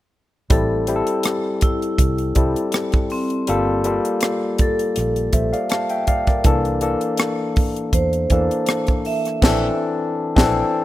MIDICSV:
0, 0, Header, 1, 5, 480
1, 0, Start_track
1, 0, Tempo, 742574
1, 327, Time_signature, 4, 2, 24, 8
1, 7011, End_track
2, 0, Start_track
2, 0, Title_t, "Vibraphone"
2, 0, Program_c, 0, 11
2, 337, Note_on_c, 0, 69, 56
2, 951, Note_off_c, 0, 69, 0
2, 1051, Note_on_c, 0, 64, 57
2, 1668, Note_off_c, 0, 64, 0
2, 2015, Note_on_c, 0, 60, 62
2, 2466, Note_off_c, 0, 60, 0
2, 2983, Note_on_c, 0, 69, 64
2, 3594, Note_off_c, 0, 69, 0
2, 5133, Note_on_c, 0, 72, 76
2, 5749, Note_off_c, 0, 72, 0
2, 5858, Note_on_c, 0, 76, 64
2, 6307, Note_off_c, 0, 76, 0
2, 7011, End_track
3, 0, Start_track
3, 0, Title_t, "Tine electric piano"
3, 0, Program_c, 1, 4
3, 322, Note_on_c, 1, 55, 78
3, 326, Note_on_c, 1, 60, 73
3, 329, Note_on_c, 1, 64, 72
3, 333, Note_on_c, 1, 69, 80
3, 431, Control_c, 1, 64, 127
3, 531, Note_off_c, 1, 55, 0
3, 532, Note_off_c, 1, 60, 0
3, 534, Note_off_c, 1, 64, 0
3, 536, Note_off_c, 1, 69, 0
3, 568, Note_on_c, 1, 55, 62
3, 568, Note_on_c, 1, 60, 69
3, 576, Note_on_c, 1, 64, 63
3, 578, Note_on_c, 1, 67, 66
3, 618, Note_off_c, 1, 67, 0
3, 619, Note_on_c, 1, 69, 82
3, 1387, Note_off_c, 1, 55, 0
3, 1387, Note_off_c, 1, 60, 0
3, 1391, Note_off_c, 1, 64, 0
3, 1412, Note_off_c, 1, 69, 0
3, 1521, Note_on_c, 1, 55, 66
3, 1528, Note_on_c, 1, 60, 59
3, 1532, Note_on_c, 1, 64, 58
3, 1532, Note_on_c, 1, 69, 71
3, 2142, Note_off_c, 1, 55, 0
3, 2145, Note_off_c, 1, 60, 0
3, 2147, Note_off_c, 1, 64, 0
3, 2148, Note_off_c, 1, 69, 0
3, 2247, Note_on_c, 1, 55, 84
3, 2255, Control_c, 1, 64, 0
3, 2256, Note_on_c, 1, 58, 72
3, 2257, Note_on_c, 1, 65, 73
3, 2260, Note_on_c, 1, 69, 95
3, 2384, Control_c, 1, 64, 127
3, 2453, Note_off_c, 1, 55, 0
3, 2458, Note_off_c, 1, 58, 0
3, 2458, Note_off_c, 1, 65, 0
3, 2460, Note_off_c, 1, 69, 0
3, 2487, Note_on_c, 1, 55, 75
3, 2490, Note_on_c, 1, 58, 58
3, 2496, Note_on_c, 1, 65, 59
3, 2502, Note_on_c, 1, 69, 71
3, 3307, Note_off_c, 1, 55, 0
3, 3308, Note_off_c, 1, 58, 0
3, 3311, Note_off_c, 1, 65, 0
3, 3314, Note_off_c, 1, 69, 0
3, 3448, Note_on_c, 1, 76, 51
3, 3451, Note_on_c, 1, 72, 42
3, 3571, Note_off_c, 1, 76, 0
3, 3572, Note_off_c, 1, 72, 0
3, 3573, Note_on_c, 1, 77, 62
3, 3578, Note_on_c, 1, 74, 54
3, 3680, Note_off_c, 1, 77, 0
3, 3682, Note_off_c, 1, 74, 0
3, 3686, Note_on_c, 1, 81, 59
3, 3691, Note_on_c, 1, 77, 55
3, 3810, Note_off_c, 1, 81, 0
3, 3813, Note_off_c, 1, 77, 0
3, 3815, Note_on_c, 1, 79, 66
3, 3819, Note_on_c, 1, 76, 50
3, 3921, Note_off_c, 1, 79, 0
3, 3923, Note_off_c, 1, 76, 0
3, 3928, Note_on_c, 1, 77, 61
3, 3930, Note_on_c, 1, 74, 58
3, 4048, Note_off_c, 1, 74, 0
3, 4051, Note_off_c, 1, 77, 0
3, 4056, Note_on_c, 1, 74, 59
3, 4064, Note_on_c, 1, 70, 50
3, 4165, Note_on_c, 1, 52, 86
3, 4168, Note_on_c, 1, 58, 76
3, 4171, Note_on_c, 1, 62, 81
3, 4175, Control_c, 1, 64, 0
3, 4179, Note_on_c, 1, 69, 92
3, 4285, Note_off_c, 1, 74, 0
3, 4289, Note_off_c, 1, 70, 0
3, 4296, Control_c, 1, 64, 127
3, 4372, Note_off_c, 1, 52, 0
3, 4374, Note_off_c, 1, 58, 0
3, 4376, Note_off_c, 1, 62, 0
3, 4379, Note_off_c, 1, 69, 0
3, 4402, Note_on_c, 1, 52, 64
3, 4405, Note_on_c, 1, 58, 66
3, 4411, Note_on_c, 1, 62, 61
3, 4413, Note_on_c, 1, 69, 78
3, 5224, Note_off_c, 1, 52, 0
3, 5226, Note_off_c, 1, 58, 0
3, 5228, Note_off_c, 1, 62, 0
3, 5230, Note_off_c, 1, 69, 0
3, 5370, Note_on_c, 1, 52, 65
3, 5376, Note_on_c, 1, 58, 59
3, 5379, Note_on_c, 1, 62, 64
3, 5382, Note_on_c, 1, 69, 72
3, 5987, Note_off_c, 1, 52, 0
3, 5989, Note_off_c, 1, 58, 0
3, 5991, Note_off_c, 1, 62, 0
3, 5993, Note_off_c, 1, 69, 0
3, 6088, Note_on_c, 1, 52, 95
3, 6088, Note_on_c, 1, 60, 91
3, 6094, Note_on_c, 1, 62, 95
3, 6095, Control_c, 1, 64, 0
3, 6099, Note_on_c, 1, 69, 95
3, 6214, Control_c, 1, 64, 127
3, 6254, Note_off_c, 1, 52, 0
3, 6254, Note_off_c, 1, 60, 0
3, 6258, Note_off_c, 1, 62, 0
3, 6261, Note_off_c, 1, 69, 0
3, 6694, Note_on_c, 1, 52, 82
3, 6700, Note_on_c, 1, 60, 88
3, 6700, Note_on_c, 1, 62, 82
3, 6707, Note_on_c, 1, 69, 89
3, 6855, Note_off_c, 1, 52, 0
3, 6859, Note_off_c, 1, 60, 0
3, 6859, Note_off_c, 1, 62, 0
3, 6863, Note_off_c, 1, 69, 0
3, 7011, End_track
4, 0, Start_track
4, 0, Title_t, "Fingered electric bass"
4, 0, Program_c, 2, 33
4, 328, Note_on_c, 2, 33, 84
4, 649, Note_off_c, 2, 33, 0
4, 1286, Note_on_c, 2, 36, 88
4, 1495, Note_off_c, 2, 36, 0
4, 1528, Note_on_c, 2, 36, 71
4, 1640, Note_off_c, 2, 36, 0
4, 2254, Note_on_c, 2, 31, 76
4, 2573, Note_off_c, 2, 31, 0
4, 3215, Note_on_c, 2, 34, 84
4, 3421, Note_off_c, 2, 34, 0
4, 3451, Note_on_c, 2, 34, 77
4, 3562, Note_off_c, 2, 34, 0
4, 4170, Note_on_c, 2, 36, 86
4, 4490, Note_off_c, 2, 36, 0
4, 5126, Note_on_c, 2, 40, 87
4, 5336, Note_off_c, 2, 40, 0
4, 5372, Note_on_c, 2, 40, 82
4, 5483, Note_off_c, 2, 40, 0
4, 6096, Note_on_c, 2, 34, 84
4, 6259, Note_off_c, 2, 34, 0
4, 6703, Note_on_c, 2, 34, 86
4, 6860, Note_off_c, 2, 34, 0
4, 7011, End_track
5, 0, Start_track
5, 0, Title_t, "Drums"
5, 323, Note_on_c, 9, 42, 73
5, 326, Note_on_c, 9, 36, 112
5, 388, Note_off_c, 9, 42, 0
5, 390, Note_off_c, 9, 36, 0
5, 563, Note_on_c, 9, 42, 57
5, 628, Note_off_c, 9, 42, 0
5, 690, Note_on_c, 9, 42, 47
5, 754, Note_off_c, 9, 42, 0
5, 797, Note_on_c, 9, 42, 90
5, 811, Note_on_c, 9, 37, 100
5, 862, Note_off_c, 9, 42, 0
5, 876, Note_off_c, 9, 37, 0
5, 1042, Note_on_c, 9, 42, 78
5, 1050, Note_on_c, 9, 36, 88
5, 1106, Note_off_c, 9, 42, 0
5, 1114, Note_off_c, 9, 36, 0
5, 1179, Note_on_c, 9, 42, 37
5, 1243, Note_off_c, 9, 42, 0
5, 1283, Note_on_c, 9, 36, 81
5, 1285, Note_on_c, 9, 42, 88
5, 1347, Note_off_c, 9, 36, 0
5, 1350, Note_off_c, 9, 42, 0
5, 1412, Note_on_c, 9, 42, 34
5, 1476, Note_off_c, 9, 42, 0
5, 1520, Note_on_c, 9, 42, 69
5, 1525, Note_on_c, 9, 36, 76
5, 1585, Note_off_c, 9, 42, 0
5, 1590, Note_off_c, 9, 36, 0
5, 1656, Note_on_c, 9, 42, 38
5, 1721, Note_off_c, 9, 42, 0
5, 1758, Note_on_c, 9, 42, 76
5, 1773, Note_on_c, 9, 37, 100
5, 1823, Note_off_c, 9, 42, 0
5, 1837, Note_off_c, 9, 37, 0
5, 1889, Note_on_c, 9, 42, 33
5, 1898, Note_on_c, 9, 36, 88
5, 1953, Note_off_c, 9, 42, 0
5, 1963, Note_off_c, 9, 36, 0
5, 2004, Note_on_c, 9, 46, 41
5, 2068, Note_off_c, 9, 46, 0
5, 2134, Note_on_c, 9, 42, 37
5, 2198, Note_off_c, 9, 42, 0
5, 2244, Note_on_c, 9, 42, 71
5, 2309, Note_off_c, 9, 42, 0
5, 2484, Note_on_c, 9, 42, 58
5, 2548, Note_off_c, 9, 42, 0
5, 2617, Note_on_c, 9, 42, 45
5, 2682, Note_off_c, 9, 42, 0
5, 2719, Note_on_c, 9, 42, 86
5, 2733, Note_on_c, 9, 37, 104
5, 2783, Note_off_c, 9, 42, 0
5, 2797, Note_off_c, 9, 37, 0
5, 2963, Note_on_c, 9, 42, 74
5, 2969, Note_on_c, 9, 36, 89
5, 3028, Note_off_c, 9, 42, 0
5, 3034, Note_off_c, 9, 36, 0
5, 3098, Note_on_c, 9, 42, 42
5, 3163, Note_off_c, 9, 42, 0
5, 3204, Note_on_c, 9, 42, 77
5, 3219, Note_on_c, 9, 37, 31
5, 3269, Note_off_c, 9, 42, 0
5, 3284, Note_off_c, 9, 37, 0
5, 3336, Note_on_c, 9, 42, 34
5, 3401, Note_off_c, 9, 42, 0
5, 3443, Note_on_c, 9, 42, 67
5, 3446, Note_on_c, 9, 36, 75
5, 3507, Note_off_c, 9, 42, 0
5, 3510, Note_off_c, 9, 36, 0
5, 3578, Note_on_c, 9, 42, 39
5, 3642, Note_off_c, 9, 42, 0
5, 3681, Note_on_c, 9, 42, 69
5, 3696, Note_on_c, 9, 37, 101
5, 3746, Note_off_c, 9, 42, 0
5, 3760, Note_off_c, 9, 37, 0
5, 3810, Note_on_c, 9, 42, 32
5, 3875, Note_off_c, 9, 42, 0
5, 3924, Note_on_c, 9, 42, 52
5, 3928, Note_on_c, 9, 36, 70
5, 3989, Note_off_c, 9, 42, 0
5, 3993, Note_off_c, 9, 36, 0
5, 4053, Note_on_c, 9, 42, 37
5, 4055, Note_on_c, 9, 36, 79
5, 4061, Note_on_c, 9, 37, 31
5, 4117, Note_off_c, 9, 42, 0
5, 4120, Note_off_c, 9, 36, 0
5, 4126, Note_off_c, 9, 37, 0
5, 4164, Note_on_c, 9, 42, 73
5, 4167, Note_on_c, 9, 36, 102
5, 4228, Note_off_c, 9, 42, 0
5, 4231, Note_off_c, 9, 36, 0
5, 4299, Note_on_c, 9, 42, 31
5, 4363, Note_off_c, 9, 42, 0
5, 4402, Note_on_c, 9, 42, 61
5, 4467, Note_off_c, 9, 42, 0
5, 4531, Note_on_c, 9, 42, 48
5, 4596, Note_off_c, 9, 42, 0
5, 4638, Note_on_c, 9, 42, 81
5, 4651, Note_on_c, 9, 37, 117
5, 4702, Note_off_c, 9, 42, 0
5, 4716, Note_off_c, 9, 37, 0
5, 4887, Note_on_c, 9, 46, 51
5, 4892, Note_on_c, 9, 36, 92
5, 4952, Note_off_c, 9, 46, 0
5, 4957, Note_off_c, 9, 36, 0
5, 5019, Note_on_c, 9, 42, 42
5, 5084, Note_off_c, 9, 42, 0
5, 5125, Note_on_c, 9, 36, 75
5, 5125, Note_on_c, 9, 42, 83
5, 5189, Note_off_c, 9, 36, 0
5, 5190, Note_off_c, 9, 42, 0
5, 5255, Note_on_c, 9, 42, 35
5, 5319, Note_off_c, 9, 42, 0
5, 5364, Note_on_c, 9, 42, 71
5, 5367, Note_on_c, 9, 36, 75
5, 5429, Note_off_c, 9, 42, 0
5, 5432, Note_off_c, 9, 36, 0
5, 5502, Note_on_c, 9, 42, 43
5, 5566, Note_off_c, 9, 42, 0
5, 5600, Note_on_c, 9, 42, 73
5, 5615, Note_on_c, 9, 37, 100
5, 5665, Note_off_c, 9, 42, 0
5, 5680, Note_off_c, 9, 37, 0
5, 5732, Note_on_c, 9, 42, 32
5, 5742, Note_on_c, 9, 36, 78
5, 5796, Note_off_c, 9, 42, 0
5, 5807, Note_off_c, 9, 36, 0
5, 5849, Note_on_c, 9, 46, 43
5, 5914, Note_off_c, 9, 46, 0
5, 5981, Note_on_c, 9, 42, 38
5, 5990, Note_on_c, 9, 37, 30
5, 6046, Note_off_c, 9, 42, 0
5, 6055, Note_off_c, 9, 37, 0
5, 6090, Note_on_c, 9, 49, 74
5, 6091, Note_on_c, 9, 36, 95
5, 6099, Note_on_c, 9, 38, 94
5, 6154, Note_off_c, 9, 49, 0
5, 6156, Note_off_c, 9, 36, 0
5, 6164, Note_off_c, 9, 38, 0
5, 6700, Note_on_c, 9, 36, 88
5, 6709, Note_on_c, 9, 38, 89
5, 6764, Note_off_c, 9, 36, 0
5, 6773, Note_off_c, 9, 38, 0
5, 7011, End_track
0, 0, End_of_file